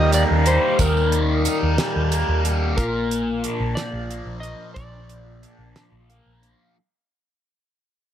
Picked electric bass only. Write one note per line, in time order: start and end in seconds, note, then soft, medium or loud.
0.00 0.24 D#2 medium
0.31 0.57 D#2 medium
0.79 1.46 D#2 medium
1.63 1.76 D#2 medium
1.96 2.22 D#2 medium
2.29 2.78 D#2 medium
2.78 3.45 A#1 medium
3.60 3.74 A#1 medium
3.93 4.20 A#1 medium
4.26 4.53 A#1 medium
4.77 5.44 A#1 medium
5.59 5.72 A#1 medium
5.92 6.19 A#1 medium
6.26 6.53 A#1 medium